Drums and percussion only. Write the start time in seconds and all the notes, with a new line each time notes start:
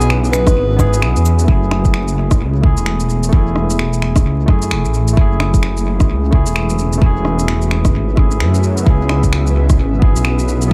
0.01 shaker
0.10 finger snap
0.24 shaker
0.33 finger snap, cabasa
0.47 kick, cross-stick, shaker
0.79 kick, cross-stick, cabasa
0.93 shaker
1.02 finger snap
1.16 shaker
1.25 cabasa, shaker
1.39 shaker
1.48 kick
1.71 finger snap, cross-stick
1.85 kick, shaker
1.94 finger snap
2.08 shaker
2.31 kick, cross-stick, shaker
2.63 kick
2.77 shaker
2.86 finger snap
3.00 shaker
3.10 shaker
3.23 shaker
3.33 kick
3.56 cross-stick
3.70 shaker
3.79 finger snap
3.93 shaker
4.02 finger snap
4.16 kick, cross-stick, shaker
4.48 kick, cross-stick
4.62 shaker
4.71 finger snap
4.85 shaker
4.94 shaker
5.08 shaker
5.17 kick
5.40 finger snap, cross-stick
5.54 kick, shaker
5.63 finger snap
5.77 shaker
6.00 kick, cross-stick, shaker
6.33 kick
6.46 shaker
6.56 finger snap
6.70 shaker
6.79 shaker
6.93 shaker
7.02 kick
7.25 cross-stick
7.39 shaker
7.48 finger snap
7.62 shaker
7.71 finger snap
7.85 kick, cross-stick, shaker
8.17 kick, cross-stick
8.31 shaker
8.40 finger snap
8.54 shaker
8.63 shaker
8.78 shaker
8.87 kick
9.09 finger snap, cross-stick
9.23 kick, shaker
9.33 finger snap
9.47 shaker
9.70 kick, cross-stick, shaker
10.02 kick
10.16 shaker
10.25 finger snap
10.39 shaker
10.48 shaker
10.62 shaker